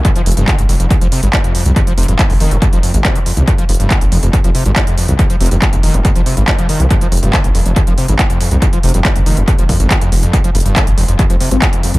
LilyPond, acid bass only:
\new Staff \with { instrumentName = "Acid bass" } { \clef bass \time 4/4 \key f \minor \tempo 4 = 140 f,16 f16 f,16 g,16 ees16 f,,16 f,16 f,16 ees,16 f16 c16 g,16 ees,16 f,16 f,16 f,16 | ees,16 f16 c16 g,16 ees,16 f,16 ees16 f,16 aes,16 f16 f,16 ees,16 c16 f16 f,16 ees,16 | f,16 f16 f,16 g,16 ees16 f,,16 f,16 f,16 ees,16 f16 c16 g,16 r16 f,16 f,16 f,16 | ees,16 f16 c16 g,16 ees,16 f,16 ees16 f,16 aes,16 f16 c16 g,16 f,16 f16 ees16 f16 |
f,16 f16 f,16 g,16 ees16 f,,16 f,16 f,16 ees,16 f16 c16 g,16 r16 f,16 f,16 f,16 | ees,16 f16 c16 g,16 ees,16 f,16 ees16 f,16 aes,16 f16 f,16 f,16 ees16 f,16 f,16 f,16 | f,16 f16 g,16 g,16 ees16 f,,16 f,16 f,16 ees,16 f16 c16 g,16 ees,16 f,16 f,16 f,16 | }